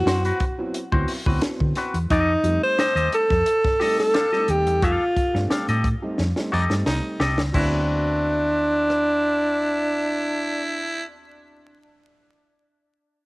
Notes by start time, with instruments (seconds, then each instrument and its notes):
Already playing: upright piano F#3 B3 C4 E4, alto saxophone F#4
0.06 fingered electric bass F#2, clean electric guitar C4 F#4 C5, snare, closed hi-hat
0.25 clean electric guitar C4 F#4 B4, closed hi-hat
0.40 kick, closed hi-hat
0.58 upright piano F#3 B3 C4 E4
0.74 closed hi-hat
0.92 fingered electric bass D2, upright piano F#3 B3 C4 E4, clean electric guitar C4 F#4 C5, kick
1.08 open hi-hat
1.26 fingered electric bass D2, upright piano F#3 B3 C4 E4, clean electric guitar C4 F#4 B4, kick
1.42 snare, closed hi-hat
1.60 fingered electric bass D3, kick
1.75 clean electric guitar C4 F#4 B4, snare, closed hi-hat
1.94 fingered electric bass E2, closed hi-hat
2.10 fingered electric bass F2, alto saxophone D#4, clean electric guitar G4 A4 D#5, kick, closed hi-hat
2.43 fingered electric bass F2, upright piano G3 A3 C4 D#4, closed hi-hat
2.63 alto saxophone C5
2.79 clean electric guitar G4 A4 D#5, snare, closed hi-hat
2.95 fingered electric bass D#2, clean electric guitar G4 A4 D#5, closed hi-hat
3.12 alto saxophone A4, closed hi-hat
3.30 fingered electric bass F2, kick, snare
3.46 closed hi-hat
3.65 kick, snare
3.80 upright piano G3 A3 C4 D#4, clean electric guitar G4 A4 D#5, snare, open hi-hat
3.99 alto saxophone A4, snare
4.14 clean electric guitar G4 A4 F5, snare, closed hi-hat
4.32 upright piano G3 A3 C4 D4, clean electric guitar G4 A4 D#5, snare
4.39 upright piano D#4
4.48 fingered electric bass D#2, alto saxophone G4, closed hi-hat
4.67 fingered electric bass E2, closed hi-hat
4.82 fingered electric bass F2, alto saxophone F4, clean electric guitar G4 A4 F5, kick, closed hi-hat
5.17 kick, closed hi-hat
5.34 fingered electric bass G2, upright piano G3 A3 C4 D4, snare
5.50 clean electric guitar G4 A4 F5, snare, closed hi-hat
5.68 fingered electric bass A2, clean electric guitar G4 A4 D#5, closed hi-hat
5.84 kick, closed hi-hat
6.02 upright piano G3 A3 C4 D#4
6.18 fingered electric bass F2, snare
6.36 upright piano G3 A3 C4 D#4, snare
6.52 fingered electric bass F2, baritone saxophone D#4, clean electric guitar G4 A4 D#5
6.70 fingered electric bass G2, upright piano G3 A3 C4 D#4, snare
6.86 fingered electric bass C2, baritone saxophone D#4, snare
7.20 fingered electric bass C2, clean electric guitar G4 A4 D#5, snare
7.38 fingered electric bass C#2, snare
7.52 fingered electric bass D2, upright piano F#3 B3 C4, clean electric guitar C4, alto saxophone D4, baritone saxophone E4, kick, crash
7.56 upright piano E4, clean electric guitar F#4 B4
8.90 cross-stick